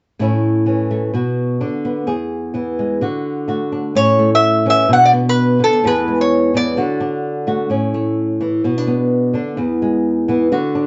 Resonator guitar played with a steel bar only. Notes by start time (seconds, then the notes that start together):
3.96 C#5
4.35 E5
4.70 E5
4.93 F#5
5.05 D5
5.29 B4
5.64 A4
5.87 B4
6.21 C#5
6.57 D5